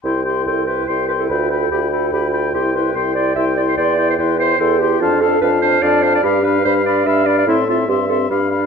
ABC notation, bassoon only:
X:1
M:3/4
L:1/8
Q:1/4=145
K:C
V:1 name="Bassoon" clef=bass
C,,2 C,,2 C,,2 | D,,2 D,,2 D,,2 | C,,2 C,,2 C,,2 | E,,2 E,,2 E,,2 |
F,,2 F,,2 F,,2 | G,,2 G,,2 G,,2 | A,,2 G,,2 G,,2 |]